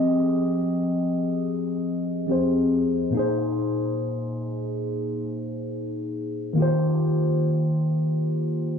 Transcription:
tine electric piano
Already playing: F3 C4 G4 G#4 D#5
2.27 F3 C4 G4 G#4
2.32 C5
3.10 A#2 A#3
3.15 D#4 G#4
3.19 C5
6.53 D#3 A#3
6.58 F4 G4
6.62 C5

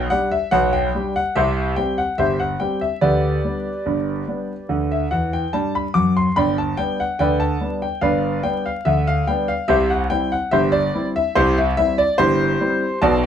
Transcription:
grand piano
Already playing: G5
0.10 G3 D4 G4 F#5
0.31 E5
0.51 B1 B2 F#5
0.73 G5
0.95 G3 D4 G4
1.16 F#5
1.36 C2 C3 G4 C5 E5
1.76 G3 C4 G4 G5
1.98 F#5
2.18 G1 G2 G4 C5 E5
2.40 F#5
2.60 G3 C4 G4 G5
2.81 E5
3.01 D2 D3 G4 B4 D5
3.44 G3 B3 D4
3.86 G1 G2
4.28 G3 B3 D4
4.69 D2 D3
4.92 E5
5.11 E2 E3 F#5
5.33 G5
5.53 G2 G3 A5
5.75 B5
5.94 F#2 F#3 D6
6.17 C6
6.36 G1 G2 D5 G5 B5
6.58 A5
6.77 G3 B3 D4 G5
7.00 F#5
7.19 D2 D3 B4 D5 G5
7.40 A5
7.61 G3 B3 D4
7.82 G5
8.01 G1 G2 B4 D5 F5
8.43 G3 B3 D4 G5
8.66 F5
8.85 D2 D3 E5
9.07 F5
9.27 G3 B3 D4 G5
9.48 F5
9.68 C2 C3 G4 C5 E5
9.90 F#5
10.10 G3 C4 E4 G5
10.32 F#5
10.51 G1 G2 G4 C5 E5
10.72 D5
10.95 G3 C4 E4
11.16 E5
11.36 C2 C3 E4 G4 C5
11.58 E5
11.77 G3 C4 E4 E5
11.98 D5
12.18 G1 G2 E4 G4 C5
12.61 G3 C4 E4
13.02 B1 B2 D5 A5

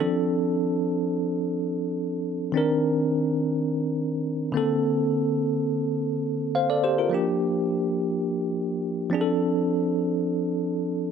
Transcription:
tine electric piano
Already playing: C4
0.00 F3 D4 A4
2.52 D#3 C4 D4
2.57 A#4
4.52 D3 A#3 C4
4.57 A4
6.55 C5 F5
6.70 A4 D5
6.84 G4 C5
6.98 F4 A#4
7.10 F3 A#3 D4
7.15 G4
9.10 F3 C4 D4
9.14 G#4
9.21 A4

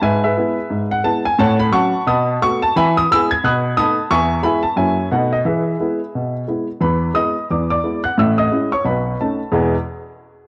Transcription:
grand piano
0.02 G#2 B4 E5 G#5
0.24 G#4 B4 E5
0.37 G#3 B3 E4
0.70 G#2
0.91 F#5
1.04 G#3 B3 E4 A5
1.25 G#5
1.39 A2 C#5 F#5 A5
1.60 B5
1.72 F#3 C#4 F#4 F#5 A5 C#6
2.07 B2 A5 B5 D#6
2.42 A3 B3 F#4 C#6
2.62 A5
2.76 E3 E5 G#5 B5
2.97 D#6
3.11 G#3 B3 E4 G#5 B5 E6
3.31 G#6
3.44 B2 B5 D#6 F#6
3.77 A3 B3 D#4 A5 B5 D#6
4.10 E2 E5 G#5 C#6
4.43 G#3 B3 E4 E5 G#5 B5
4.63 A5
4.76 F#2 F#3 A#3 E4 C#5 E5 G#5
5.11 B2 A3 B3 D#4 B4 D#5 F#5
5.33 D#5
5.45 E3 G#4 B4 E5
5.80 G#3 B3 E4
6.15 B2
6.48 G#3 B3 E4
6.81 E2 E3 B4 B5
7.14 G#3 B3 E4 D#5 D#6
7.50 E2 E3 D5 D6
7.71 D5 D6
7.84 G#3 B3 E4
8.04 F#5 F#6
8.18 A1 A2 E5 E6
8.38 D#5 D#6
8.52 G#3 C#4 E4
8.72 C#5 C#6
8.84 B1 B2 B4 B5
9.20 A3 C#4 D#4 A4 A5
9.52 E2 B2 G#3 B3 E4 G#4 G#5

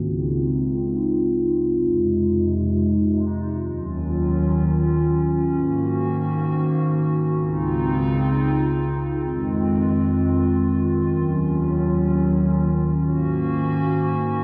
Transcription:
ambient pad
Already playing: C#2 C#3 C4 D#4 F4
1.75 F2 C3 G#3 D#4
3.61 D#2 D#3 F#3 C#4 F4
5.47 G#2 D#3 A#3 F#4
7.33 C#2 C#3 C4 D#4 F4
9.19 F2 D#3 G#3 C4 F4
11.05 D#2 F#3 C#4
12.91 G#2 A#3 C#4 F#4

